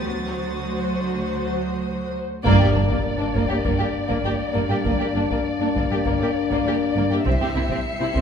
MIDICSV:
0, 0, Header, 1, 11, 480
1, 0, Start_track
1, 0, Tempo, 600000
1, 46, Time_signature, 4, 2, 24, 8
1, 6569, End_track
2, 0, Start_track
2, 0, Title_t, "Violin section"
2, 0, Program_c, 0, 48
2, 0, Note_on_c, 0, 87, 33
2, 0, Note_on_c, 0, 93, 34
2, 1212, Note_off_c, 0, 93, 0
2, 1689, Note_off_c, 0, 87, 0
2, 5811, Note_on_c, 0, 97, 32
2, 5819, Note_on_c, 0, 96, 33
2, 6569, Note_off_c, 0, 96, 0
2, 6569, Note_off_c, 0, 97, 0
2, 6569, End_track
3, 0, Start_track
3, 0, Title_t, "Felt piano"
3, 0, Program_c, 1, 0
3, 0, Control_c, 1, 64, 127
3, 63, Control_c, 1, 64, 0
3, 194, Control_c, 1, 64, 127
3, 1971, Note_on_c, 1, 70, 23
3, 1971, Note_on_c, 1, 82, 28
3, 1982, Control_c, 1, 64, 0
3, 2091, Control_c, 1, 64, 127
3, 3376, Note_off_c, 1, 70, 0
3, 3376, Note_off_c, 1, 82, 0
3, 5823, Control_c, 1, 64, 0
3, 5945, Control_c, 1, 64, 127
3, 6569, End_track
4, 0, Start_track
4, 0, Title_t, "Violin section"
4, 0, Program_c, 2, 48
4, 41, Note_on_c, 2, 72, 28
4, 1771, Note_off_c, 2, 72, 0
4, 1963, Note_on_c, 2, 74, 41
4, 5773, Note_off_c, 2, 74, 0
4, 5804, Note_on_c, 2, 76, 37
4, 6569, Note_off_c, 2, 76, 0
4, 6569, End_track
5, 0, Start_track
5, 0, Title_t, "Violin section"
5, 0, Program_c, 3, 48
5, 1953, Note_on_c, 3, 58, 57
5, 2071, Note_off_c, 3, 58, 0
5, 2073, Note_on_c, 3, 67, 30
5, 2123, Note_off_c, 3, 67, 0
5, 2194, Note_on_c, 3, 62, 28
5, 2244, Note_off_c, 3, 62, 0
5, 2316, Note_on_c, 3, 58, 35
5, 2366, Note_off_c, 3, 58, 0
5, 2551, Note_on_c, 3, 62, 30
5, 2602, Note_off_c, 3, 62, 0
5, 2675, Note_on_c, 3, 58, 37
5, 2725, Note_off_c, 3, 58, 0
5, 2792, Note_on_c, 3, 67, 30
5, 2842, Note_off_c, 3, 67, 0
5, 2921, Note_on_c, 3, 58, 44
5, 2970, Note_off_c, 3, 58, 0
5, 3035, Note_on_c, 3, 67, 31
5, 3085, Note_off_c, 3, 67, 0
5, 3272, Note_on_c, 3, 58, 41
5, 3323, Note_off_c, 3, 58, 0
5, 3401, Note_on_c, 3, 67, 33
5, 3450, Note_off_c, 3, 67, 0
5, 3631, Note_on_c, 3, 58, 45
5, 3682, Note_off_c, 3, 58, 0
5, 3762, Note_on_c, 3, 67, 26
5, 3811, Note_off_c, 3, 67, 0
5, 3890, Note_on_c, 3, 58, 44
5, 3937, Note_off_c, 3, 58, 0
5, 4000, Note_on_c, 3, 67, 29
5, 4050, Note_off_c, 3, 67, 0
5, 4132, Note_on_c, 3, 62, 30
5, 4179, Note_off_c, 3, 62, 0
5, 4247, Note_on_c, 3, 58, 40
5, 4295, Note_off_c, 3, 58, 0
5, 4491, Note_on_c, 3, 62, 36
5, 4538, Note_off_c, 3, 62, 0
5, 4615, Note_on_c, 3, 58, 43
5, 4661, Note_off_c, 3, 58, 0
5, 4734, Note_on_c, 3, 67, 31
5, 4780, Note_off_c, 3, 67, 0
5, 4852, Note_on_c, 3, 58, 41
5, 4899, Note_off_c, 3, 58, 0
5, 4978, Note_on_c, 3, 67, 31
5, 5024, Note_off_c, 3, 67, 0
5, 5220, Note_on_c, 3, 58, 49
5, 5265, Note_off_c, 3, 58, 0
5, 5349, Note_on_c, 3, 67, 29
5, 5392, Note_off_c, 3, 67, 0
5, 5579, Note_on_c, 3, 58, 48
5, 5625, Note_off_c, 3, 58, 0
5, 5692, Note_on_c, 3, 67, 30
5, 5739, Note_off_c, 3, 67, 0
5, 5810, Note_on_c, 3, 60, 42
5, 5857, Note_off_c, 3, 60, 0
5, 5924, Note_on_c, 3, 67, 31
5, 5973, Note_off_c, 3, 67, 0
5, 6043, Note_on_c, 3, 64, 32
5, 6092, Note_off_c, 3, 64, 0
5, 6161, Note_on_c, 3, 60, 43
5, 6210, Note_off_c, 3, 60, 0
5, 6411, Note_on_c, 3, 64, 33
5, 6458, Note_off_c, 3, 64, 0
5, 6519, Note_on_c, 3, 60, 42
5, 6569, Note_off_c, 3, 60, 0
5, 6569, End_track
6, 0, Start_track
6, 0, Title_t, "French horn section"
6, 0, Program_c, 4, 60
6, 1966, Note_on_c, 4, 62, 43
6, 1967, Note_on_c, 4, 58, 48
6, 5774, Note_off_c, 4, 62, 0
6, 5775, Note_off_c, 4, 58, 0
6, 5804, Note_on_c, 4, 64, 41
6, 5805, Note_on_c, 4, 55, 40
6, 6569, Note_off_c, 4, 55, 0
6, 6569, Note_off_c, 4, 64, 0
6, 6569, End_track
7, 0, Start_track
7, 0, Title_t, "Viola section"
7, 0, Program_c, 5, 48
7, 41, Note_on_c, 5, 66, 28
7, 1723, Note_off_c, 5, 66, 0
7, 1963, Note_on_c, 5, 58, 58
7, 2071, Note_off_c, 5, 58, 0
7, 2081, Note_on_c, 5, 58, 28
7, 2130, Note_off_c, 5, 58, 0
7, 2201, Note_on_c, 5, 58, 30
7, 2250, Note_off_c, 5, 58, 0
7, 2318, Note_on_c, 5, 58, 40
7, 2368, Note_off_c, 5, 58, 0
7, 2562, Note_on_c, 5, 58, 30
7, 2611, Note_off_c, 5, 58, 0
7, 2686, Note_on_c, 5, 58, 38
7, 2734, Note_off_c, 5, 58, 0
7, 2802, Note_on_c, 5, 58, 27
7, 2851, Note_off_c, 5, 58, 0
7, 2921, Note_on_c, 5, 58, 42
7, 2970, Note_off_c, 5, 58, 0
7, 3044, Note_on_c, 5, 58, 34
7, 3092, Note_off_c, 5, 58, 0
7, 3279, Note_on_c, 5, 58, 39
7, 3328, Note_off_c, 5, 58, 0
7, 3412, Note_on_c, 5, 58, 30
7, 3459, Note_off_c, 5, 58, 0
7, 3639, Note_on_c, 5, 58, 38
7, 3688, Note_off_c, 5, 58, 0
7, 3757, Note_on_c, 5, 58, 33
7, 3807, Note_off_c, 5, 58, 0
7, 3872, Note_on_c, 5, 58, 44
7, 3923, Note_off_c, 5, 58, 0
7, 3994, Note_on_c, 5, 58, 32
7, 4045, Note_off_c, 5, 58, 0
7, 4121, Note_on_c, 5, 58, 28
7, 4170, Note_off_c, 5, 58, 0
7, 4240, Note_on_c, 5, 58, 39
7, 4289, Note_off_c, 5, 58, 0
7, 4485, Note_on_c, 5, 58, 32
7, 4534, Note_off_c, 5, 58, 0
7, 4604, Note_on_c, 5, 58, 38
7, 4653, Note_off_c, 5, 58, 0
7, 4724, Note_on_c, 5, 58, 28
7, 4772, Note_off_c, 5, 58, 0
7, 4849, Note_on_c, 5, 58, 44
7, 4897, Note_off_c, 5, 58, 0
7, 4970, Note_on_c, 5, 58, 34
7, 5017, Note_off_c, 5, 58, 0
7, 5208, Note_on_c, 5, 58, 47
7, 5256, Note_off_c, 5, 58, 0
7, 5331, Note_on_c, 5, 58, 29
7, 5378, Note_off_c, 5, 58, 0
7, 5566, Note_on_c, 5, 58, 39
7, 5614, Note_off_c, 5, 58, 0
7, 5687, Note_on_c, 5, 58, 34
7, 5735, Note_off_c, 5, 58, 0
7, 5801, Note_on_c, 5, 60, 41
7, 5850, Note_off_c, 5, 60, 0
7, 5930, Note_on_c, 5, 60, 31
7, 5978, Note_off_c, 5, 60, 0
7, 6049, Note_on_c, 5, 60, 35
7, 6096, Note_off_c, 5, 60, 0
7, 6168, Note_on_c, 5, 60, 42
7, 6215, Note_off_c, 5, 60, 0
7, 6396, Note_on_c, 5, 60, 38
7, 6446, Note_off_c, 5, 60, 0
7, 6524, Note_on_c, 5, 60, 51
7, 6569, Note_off_c, 5, 60, 0
7, 6569, End_track
8, 0, Start_track
8, 0, Title_t, "Cello section"
8, 0, Program_c, 6, 48
8, 37, Note_on_c, 6, 54, 36
8, 1722, Note_off_c, 6, 54, 0
8, 1962, Note_on_c, 6, 43, 57
8, 2075, Note_off_c, 6, 43, 0
8, 2086, Note_on_c, 6, 43, 28
8, 2134, Note_off_c, 6, 43, 0
8, 2201, Note_on_c, 6, 43, 30
8, 2250, Note_off_c, 6, 43, 0
8, 2320, Note_on_c, 6, 43, 41
8, 2369, Note_off_c, 6, 43, 0
8, 2555, Note_on_c, 6, 43, 30
8, 2605, Note_off_c, 6, 43, 0
8, 2674, Note_on_c, 6, 43, 42
8, 2724, Note_off_c, 6, 43, 0
8, 2794, Note_on_c, 6, 43, 26
8, 2844, Note_off_c, 6, 43, 0
8, 2915, Note_on_c, 6, 43, 45
8, 2965, Note_off_c, 6, 43, 0
8, 3034, Note_on_c, 6, 43, 28
8, 3084, Note_off_c, 6, 43, 0
8, 3274, Note_on_c, 6, 43, 40
8, 3325, Note_off_c, 6, 43, 0
8, 3393, Note_on_c, 6, 43, 30
8, 3443, Note_off_c, 6, 43, 0
8, 3630, Note_on_c, 6, 43, 43
8, 3681, Note_off_c, 6, 43, 0
8, 3750, Note_on_c, 6, 43, 32
8, 3802, Note_off_c, 6, 43, 0
8, 3872, Note_on_c, 6, 43, 39
8, 3923, Note_off_c, 6, 43, 0
8, 3994, Note_on_c, 6, 43, 31
8, 4044, Note_off_c, 6, 43, 0
8, 4109, Note_on_c, 6, 43, 30
8, 4160, Note_off_c, 6, 43, 0
8, 4236, Note_on_c, 6, 43, 41
8, 4286, Note_off_c, 6, 43, 0
8, 4472, Note_on_c, 6, 43, 33
8, 4523, Note_off_c, 6, 43, 0
8, 4591, Note_on_c, 6, 43, 44
8, 4642, Note_off_c, 6, 43, 0
8, 4713, Note_on_c, 6, 43, 29
8, 4764, Note_off_c, 6, 43, 0
8, 4833, Note_on_c, 6, 43, 45
8, 4884, Note_off_c, 6, 43, 0
8, 4951, Note_on_c, 6, 43, 31
8, 5002, Note_off_c, 6, 43, 0
8, 5192, Note_on_c, 6, 43, 42
8, 5243, Note_off_c, 6, 43, 0
8, 5316, Note_on_c, 6, 43, 30
8, 5366, Note_off_c, 6, 43, 0
8, 5557, Note_on_c, 6, 43, 47
8, 5607, Note_off_c, 6, 43, 0
8, 5677, Note_on_c, 6, 43, 33
8, 5727, Note_off_c, 6, 43, 0
8, 5797, Note_on_c, 6, 48, 41
8, 5847, Note_off_c, 6, 48, 0
8, 5917, Note_on_c, 6, 48, 29
8, 5966, Note_off_c, 6, 48, 0
8, 6041, Note_on_c, 6, 48, 36
8, 6090, Note_off_c, 6, 48, 0
8, 6154, Note_on_c, 6, 48, 52
8, 6205, Note_off_c, 6, 48, 0
8, 6398, Note_on_c, 6, 48, 36
8, 6448, Note_off_c, 6, 48, 0
8, 6516, Note_on_c, 6, 48, 49
8, 6566, Note_off_c, 6, 48, 0
8, 6569, End_track
9, 0, Start_track
9, 0, Title_t, "Double bass section"
9, 0, Program_c, 7, 48
9, 46, Note_on_c, 7, 38, 33
9, 1806, Note_off_c, 7, 38, 0
9, 1962, Note_on_c, 7, 31, 61
9, 2076, Note_off_c, 7, 31, 0
9, 2205, Note_on_c, 7, 31, 29
9, 2253, Note_off_c, 7, 31, 0
9, 2685, Note_on_c, 7, 31, 44
9, 2733, Note_off_c, 7, 31, 0
9, 2921, Note_on_c, 7, 31, 43
9, 2970, Note_off_c, 7, 31, 0
9, 3404, Note_on_c, 7, 31, 30
9, 3452, Note_off_c, 7, 31, 0
9, 3646, Note_on_c, 7, 31, 41
9, 3694, Note_off_c, 7, 31, 0
9, 3881, Note_on_c, 7, 31, 49
9, 3930, Note_off_c, 7, 31, 0
9, 4123, Note_on_c, 7, 31, 33
9, 4172, Note_off_c, 7, 31, 0
9, 4607, Note_on_c, 7, 31, 45
9, 4655, Note_off_c, 7, 31, 0
9, 4847, Note_on_c, 7, 31, 45
9, 4895, Note_off_c, 7, 31, 0
9, 5329, Note_on_c, 7, 31, 33
9, 5377, Note_off_c, 7, 31, 0
9, 5566, Note_on_c, 7, 31, 42
9, 5614, Note_off_c, 7, 31, 0
9, 5804, Note_on_c, 7, 36, 51
9, 5853, Note_off_c, 7, 36, 0
9, 6049, Note_on_c, 7, 36, 36
9, 6096, Note_off_c, 7, 36, 0
9, 6526, Note_on_c, 7, 36, 52
9, 6569, Note_off_c, 7, 36, 0
9, 6569, End_track
10, 0, Start_track
10, 0, Title_t, "Impact"
10, 0, Program_c, 8, 103
10, 1963, Note_on_c, 8, 60, 41
10, 3884, Note_off_c, 8, 60, 0
10, 6569, End_track
11, 0, Start_track
11, 0, Title_t, "Taiko and cinematic ensemble drums"
11, 1966, Note_on_c, 9, 41, 63
11, 2046, Note_off_c, 9, 41, 0
11, 2322, Note_on_c, 9, 41, 53
11, 2402, Note_off_c, 9, 41, 0
11, 2684, Note_on_c, 9, 41, 54
11, 2764, Note_off_c, 9, 41, 0
11, 2920, Note_on_c, 9, 41, 59
11, 3000, Note_off_c, 9, 41, 0
11, 3282, Note_on_c, 9, 41, 59
11, 3362, Note_off_c, 9, 41, 0
11, 3883, Note_on_c, 9, 41, 62
11, 3963, Note_off_c, 9, 41, 0
11, 4247, Note_on_c, 9, 41, 53
11, 4327, Note_off_c, 9, 41, 0
11, 4606, Note_on_c, 9, 41, 62
11, 4686, Note_off_c, 9, 41, 0
11, 4846, Note_on_c, 9, 41, 57
11, 4926, Note_off_c, 9, 41, 0
11, 5207, Note_on_c, 9, 41, 57
11, 5287, Note_off_c, 9, 41, 0
11, 5805, Note_on_c, 9, 41, 64
11, 5885, Note_off_c, 9, 41, 0
11, 6166, Note_on_c, 9, 41, 57
11, 6246, Note_off_c, 9, 41, 0
11, 6524, Note_on_c, 9, 41, 64
11, 6569, Note_off_c, 9, 41, 0
11, 6569, End_track
0, 0, End_of_file